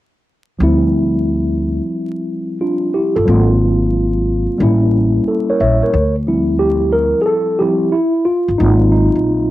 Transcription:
0.59 1.79 D2 loud
0.59 3.22 F3 medium
0.59 3.23 G3 medium
0.59 3.24 C4 medium
0.63 2.58 E4 medium
2.61 2.93 D4 soft
2.61 2.93 F4 medium
2.94 3.15 E4 soft
2.94 3.15 G4 medium
3.16 3.26 G1 medium
3.16 3.29 F4 medium
3.16 3.48 A4 medium
3.25 4.45 G#1 loud
3.25 4.57 F#3 medium
3.25 4.58 A#3 medium
3.25 4.58 C4 medium
3.30 4.59 F4 medium
4.58 5.17 A1 medium
4.58 5.90 G3 medium
4.58 5.91 A#3 medium
4.58 5.92 C#4 medium
4.63 5.93 E4 medium
5.28 5.48 A4 medium
5.50 5.61 A#4 medium
5.50 5.60 C#5 medium
5.60 5.79 A#1 medium
5.60 5.82 C#5 soft
5.60 5.82 E5 medium
5.83 6.15 A#4 medium
5.83 6.14 C#5 medium
5.94 7.12 D2 medium
6.27 7.60 F3 soft
6.27 7.60 G3 soft
6.27 7.60 C4 soft
6.27 7.61 E4 medium
6.59 6.91 G4 medium
6.93 7.20 A#4 medium
7.22 7.27 G#4 medium
7.26 7.61 A4 medium
7.59 7.91 F3 soft
7.59 7.91 G3 soft
7.59 7.91 C4 soft
7.59 7.91 E4 soft
7.59 7.94 G4 medium
7.92 8.24 E4 medium
8.25 8.60 F4 medium
8.49 8.59 G1 medium
8.58 9.08 G#1 loud
8.58 9.51 F#3 medium
8.58 9.51 A#3 soft
8.58 9.51 C4 soft
8.58 8.91 D#4 medium
8.58 9.51 F4 medium
8.92 9.51 D#4 medium
9.15 9.51 A#1 medium

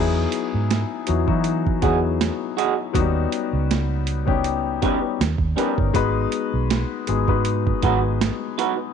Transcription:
0.00 0.25 E2 medium
0.00 1.00 F#3 medium
0.00 1.00 B3 medium
0.00 1.00 D#4 medium
0.00 1.01 E4 medium
0.00 1.01 G#4 loud
0.32 closed hi-hat medium
0.54 0.83 G#2 medium
0.71 snare medium
0.71 closed hi-hat medium
1.07 1.24 E2 medium
1.07 1.25 F#3 medium
1.07 1.25 B3 medium
1.07 1.26 D#4 medium
1.07 1.26 E4 medium
1.07 1.27 F#4 medium
1.07 closed hi-hat medium
1.26 1.85 E3 medium
1.26 1.78 F#3 medium
1.26 1.78 B3 medium
1.26 1.79 D#4 medium
1.26 1.79 E4 medium
1.26 1.79 F#4 medium
1.26 kick medium
1.44 closed hi-hat medium
1.67 kick medium
1.81 2.29 E2 medium
1.81 2.87 F#3 medium
1.81 2.87 B3 medium
1.81 2.87 D#4 medium
1.81 2.88 E4 medium
1.81 1.98 F#4 soft
1.81 2.88 G#4 medium
1.81 1.98 G#4 medium
1.81 1.99 D#5 medium
1.81 kick medium
1.81 closed hi-hat soft
2.21 snare loud
2.21 closed hi-hat medium
2.57 2.73 F#4 medium
2.57 2.73 G#4 medium
2.57 2.74 D#5 medium
2.57 closed hi-hat medium
2.93 3.25 D#2 loud
2.93 3.00 F#3 medium
2.93 4.17 B3 medium
2.93 4.17 C#4 medium
2.93 4.18 D#4 medium
2.93 4.18 F#4 medium
2.93 kick loud
2.93 closed hi-hat medium
2.99 4.20 G3 medium
3.32 closed hi-hat medium
3.53 4.99 C#2 medium
3.71 snare medium
3.71 closed hi-hat medium
4.07 closed hi-hat medium
4.26 4.78 G3 medium
4.26 4.78 B3 medium
4.26 4.78 C#4 medium
4.26 4.79 D#4 medium
4.26 4.79 G4 medium
4.26 kick medium
4.44 closed hi-hat medium
4.82 5.19 G3 medium
4.82 5.19 B3 medium
4.82 4.98 C#4 medium
4.82 5.20 C#4 medium
4.82 5.20 D#4 medium
4.82 4.98 G4 medium
4.82 5.20 G4 medium
4.82 4.99 B4 medium
4.82 kick medium
4.82 closed hi-hat soft
5.21 5.36 D#2 medium
5.21 snare loud
5.21 closed hi-hat medium
5.38 5.53 D#2 medium
5.38 kick medium
5.56 5.91 G3 medium
5.56 5.92 B3 medium
5.56 5.73 C#4 medium
5.56 5.92 C#4 medium
5.56 5.92 D#4 medium
5.56 5.73 G4 medium
5.56 5.93 A#4 medium
5.56 5.73 B4 medium
5.56 closed hi-hat medium
5.78 5.92 G1 medium
5.78 kick medium
5.93 6.25 G#1 medium
5.93 6.99 G#3 medium
5.93 7.00 B3 medium
5.93 7.00 D#4 medium
5.93 7.00 F#4 medium
5.93 7.01 B4 loud
5.93 kick loud
5.93 closed hi-hat medium
6.32 closed hi-hat medium
6.54 6.83 B1 medium
6.70 snare loud
6.70 closed hi-hat medium
7.07 7.24 G#1 medium
7.07 7.25 G#3 medium
7.07 7.26 B3 medium
7.07 7.26 D#4 medium
7.07 7.27 F#4 medium
7.07 7.27 G#4 medium
7.07 closed hi-hat medium
7.27 7.72 G#2 medium
7.27 7.78 G#3 medium
7.27 7.79 B3 medium
7.27 7.79 D#4 medium
7.27 7.79 F#4 medium
7.27 7.79 B4 medium
7.27 kick medium
7.45 closed hi-hat medium
7.67 kick medium
7.81 8.29 G#1 medium
7.81 8.87 G#3 medium
7.81 8.88 B3 medium
7.81 8.88 D#4 medium
7.81 7.98 D#4 medium
7.81 8.88 F#4 medium
7.81 7.99 F#4 medium
7.81 8.88 G#4 medium
7.81 7.99 B4 medium
7.81 kick medium
7.81 closed hi-hat soft
8.21 snare loud
8.21 closed hi-hat medium
8.58 8.73 D#4 medium
8.58 8.74 F#4 medium
8.58 8.74 B4 medium
8.58 closed hi-hat medium

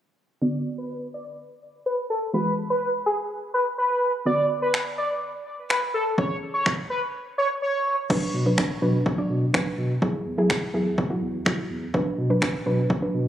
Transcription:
0.42 2.30 D3 medium
0.42 2.30 B3 medium
0.42 2.31 F#4 medium
0.42 0.61 D5 loud
0.78 0.97 B4 medium
1.14 1.24 D5 medium
1.86 1.95 B4 medium
2.10 2.19 A4 medium
2.33 4.22 E3 medium
2.33 4.22 G#3 medium
2.33 4.22 F#4 medium
2.33 2.53 B4 loud
2.70 2.89 B4 medium
3.06 3.16 G#4 medium
3.54 3.63 B4 medium
3.78 4.12 B4 medium
4.25 6.14 D3 medium
4.25 6.14 B3 medium
4.25 6.14 F#4 medium
4.25 4.45 D5 loud
4.62 4.81 B4 medium
4.74 finger snap loud
4.98 5.07 D5 medium
5.70 5.79 B4 medium
5.70 finger snap loud
5.94 6.04 A4 medium
6.18 8.06 E3 medium
6.18 8.06 C#4 medium
6.18 8.06 G#4 medium
6.18 6.37 C#5 loud
6.18 kick loud
6.54 6.73 C#5 medium
6.66 finger snap loud
6.66 kick loud
6.90 7.00 B4 medium
7.38 7.48 C#5 medium
7.62 7.96 C#5 medium
8.10 8.26 B1 loud
8.10 8.34 F#3 medium
8.10 8.34 D4 medium
8.10 8.34 B4 loud
8.10 kick loud
8.10 crash medium
8.34 8.50 B2 loud
8.46 8.70 F#3 medium
8.46 8.70 D4 medium
8.46 8.70 B4 medium
8.58 8.74 B1 loud
8.58 finger snap loud
8.58 kick loud
8.82 8.98 B2 loud
8.82 9.06 F#3 medium
8.82 9.06 D4 medium
8.82 9.06 B4 medium
9.06 9.22 B1 loud
9.06 kick loud
9.18 9.42 F#3 medium
9.18 9.42 D4 medium
9.18 9.42 D5 loud
9.30 9.46 B2 loud
9.54 9.70 B1 loud
9.54 9.85 F#3 medium
9.54 9.86 D4 medium
9.54 9.86 B4 medium
9.54 finger snap loud
9.54 kick loud
9.78 9.94 B2 loud
10.02 10.18 E1 loud
10.02 10.26 F#3 loud
10.02 10.26 E4 medium
10.02 10.26 G#4 loud
10.02 kick loud
10.26 10.42 E2 loud
10.38 10.62 F#3 medium
10.38 10.62 E4 medium
10.38 10.62 G#4 medium
10.50 10.66 E1 loud
10.50 finger snap loud
10.50 kick loud
10.74 10.90 E2 loud
10.74 10.98 F#3 medium
10.74 10.98 E4 medium
10.74 10.98 G#4 loud
10.98 11.14 E1 loud
10.98 kick loud
11.10 11.34 F#3 medium
11.10 11.34 E4 medium
11.10 11.34 F#4 medium
11.22 11.38 E2 medium
11.46 11.62 E1 loud
11.46 11.78 F#3 medium
11.46 11.78 E4 medium
11.46 11.78 F#4 medium
11.46 finger snap loud
11.46 kick loud
11.70 11.86 E2 loud
11.94 12.10 B1 loud
11.94 12.18 F#3 medium
11.94 12.18 D4 medium
11.94 12.18 B4 loud
11.94 kick loud
12.18 12.34 B2 loud
12.30 12.54 F#3 medium
12.30 12.54 D4 medium
12.30 12.54 B4 loud
12.42 12.58 B1 loud
12.42 finger snap loud
12.42 kick loud
12.66 12.82 B2 loud
12.66 12.90 F#3 medium
12.66 12.90 D4 medium
12.66 12.90 B4 loud
12.90 13.06 B1 loud
12.90 kick loud
13.02 13.26 F#3 medium
13.02 13.26 D4 medium
13.02 13.26 B4 loud
13.14 13.28 B2 loud

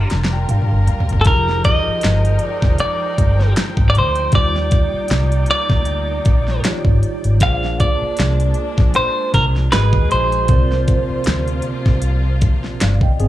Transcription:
0.00 1.21 G3 medium
0.00 1.23 G3 medium
0.00 1.23 D4 medium
0.00 1.23 F4 medium
0.00 1.21 G4 medium
0.00 1.22 A#4 medium
0.00 4.30 A#4 medium
0.00 1.22 D5 medium
0.00 0.49 F5 medium
0.10 0.45 F1 medium
0.10 0.31 A#5 medium
0.10 snare medium
0.10 closed hi-hat medium
0.25 snare medium
0.33 0.48 G5 medium
0.49 0.85 F5 medium
0.49 muted fingered electric bass stroke soft
0.49 closed hi-hat medium
0.49 mid tom medium
0.62 mid tom medium
0.72 0.86 G1 medium
0.87 1.24 F5 medium
0.87 closed hi-hat medium
0.87 floor tom medium
1.00 floor tom medium
1.09 1.27 G1 medium
1.09 closed hi-hat medium
1.09 floor tom medium
1.21 1.27 A4 medium
1.21 7.37 G5 medium
1.21 closed hi-hat medium
1.25 1.78 F1 loud
1.25 4.30 F3 medium
1.25 4.29 F3 medium
1.25 4.30 G#3 medium
1.25 4.30 D#4 medium
1.25 4.31 D#4 medium
1.25 4.30 F4 medium
1.25 4.30 G4 medium
1.25 4.30 G#4 medium
1.25 1.64 A#4 medium
1.25 4.31 A#4 medium
1.25 kick loud
1.49 snare soft
1.64 2.43 D#5 loud
1.64 kick loud
1.64 closed hi-hat medium
1.88 muted fingered electric bass stroke soft
2.01 2.37 G1 medium
2.01 snare loud
2.01 closed hi-hat medium
2.25 closed hi-hat soft
2.39 closed hi-hat medium
2.43 2.80 D5 loud
2.62 2.78 F1 medium
2.62 kick medium
2.62 snare soft
2.78 3.53 D5 medium
2.78 closed hi-hat medium
3.18 3.52 G1 loud
3.18 kick medium
3.18 closed hi-hat medium
3.41 snare soft
3.56 snare loud
3.56 closed hi-hat medium
3.77 3.98 G#1 medium
3.77 kick medium
3.90 3.95 D5 medium
3.95 4.29 D2 medium
3.95 4.35 C5 medium
3.95 closed hi-hat medium
4.15 closed hi-hat soft
4.31 4.85 D#2 loud
4.31 6.59 G3 medium
4.31 7.37 A#3 medium
4.31 7.37 D#4 medium
4.31 6.60 D#4 medium
4.31 6.60 F4 medium
4.31 6.61 G4 medium
4.31 7.37 D5 medium
4.31 5.49 D5 loud
4.31 kick loud
4.31 closed hi-hat medium
4.36 6.61 D5 medium
4.56 snare soft
4.71 kick loud
4.71 closed hi-hat medium
4.94 muted fingered electric bass stroke soft
5.08 5.44 C2 medium
5.08 snare loud
5.08 closed hi-hat medium
5.32 closed hi-hat medium
5.46 closed hi-hat medium
5.51 6.61 D5 medium
5.70 6.19 D2 medium
5.70 kick medium
5.70 snare soft
5.85 closed hi-hat medium
6.25 6.60 A#1 medium
6.25 kick medium
6.25 closed hi-hat medium
6.48 snare soft
6.64 7.41 D#3 medium
6.64 7.41 D#4 medium
6.64 7.40 F4 medium
6.64 7.42 G4 medium
6.64 6.72 C#5 medium
6.64 muted fingered electric bass stroke soft
6.64 snare loud
6.64 closed hi-hat medium
6.73 7.43 D5 medium
6.85 7.00 G#1 medium
6.85 kick medium
7.03 closed hi-hat medium
7.24 7.42 G#1 medium
7.24 closed hi-hat medium
7.40 7.94 A#1 loud
7.40 10.46 G#3 medium
7.40 9.67 A#3 medium
7.40 9.70 A#3 medium
7.40 9.70 D4 medium
7.40 9.68 F4 medium
7.40 9.68 G#4 medium
7.40 9.69 C5 medium
7.40 9.69 D5 medium
7.40 7.78 F5 loud
7.40 kick loud
7.40 closed hi-hat medium
7.64 snare soft
7.80 8.96 D5 loud
7.80 kick medium
7.80 closed hi-hat medium
8.02 muted fingered electric bass stroke soft
8.17 8.52 C2 medium
8.17 snare loud
8.17 closed hi-hat medium
8.40 closed hi-hat medium
8.54 closed hi-hat medium
8.78 8.93 A#1 medium
8.78 kick medium
8.78 snare soft
8.94 9.34 C5 loud
8.94 closed hi-hat medium
9.34 9.67 C2 medium
9.34 9.45 A#4 medium
9.34 kick medium
9.34 closed hi-hat medium
9.56 snare soft
9.72 9.91 G#1 medium
9.72 10.49 G#3 medium
9.72 10.49 D#4 medium
9.72 10.48 F#4 medium
9.72 10.49 F#4 medium
9.72 10.49 G#4 medium
9.72 10.50 G#4 medium
9.72 10.11 B4 medium
9.72 10.50 D#5 medium
9.72 snare loud
9.72 closed hi-hat medium
9.93 10.08 D#2 medium
9.93 kick medium
10.11 10.50 A#1 medium
10.11 12.38 C5 medium
10.11 closed hi-hat medium
10.32 closed hi-hat medium
10.48 11.02 C2 loud
10.48 13.28 C3 medium
10.48 13.28 F3 medium
10.48 13.28 A#3 medium
10.48 13.20 C4 medium
10.48 13.28 F4 medium
10.48 13.28 A#4 medium
10.48 kick loud
10.48 closed hi-hat loud
10.52 12.77 D5 medium
10.72 snare soft
10.88 kick medium
10.88 closed hi-hat medium
11.10 muted fingered electric bass stroke medium
11.24 11.60 D2 medium
11.24 snare loud
11.24 closed hi-hat medium
11.48 closed hi-hat soft
11.62 closed hi-hat medium
11.86 12.42 C2 medium
11.86 kick medium
11.86 snare soft
12.02 closed hi-hat medium
12.41 12.75 A#1 medium
12.41 kick medium
12.41 closed hi-hat medium
12.64 snare soft
12.80 12.99 G1 medium
12.80 13.01 D5 medium
12.80 13.00 F5 medium
12.80 snare loud
12.80 closed hi-hat medium
13.01 13.28 D#5 medium
13.01 13.28 G5 medium
13.01 kick loud
13.20 13.28 G1 medium
13.20 13.28 C4 medium
13.20 13.28 G#4 medium
13.20 closed hi-hat medium

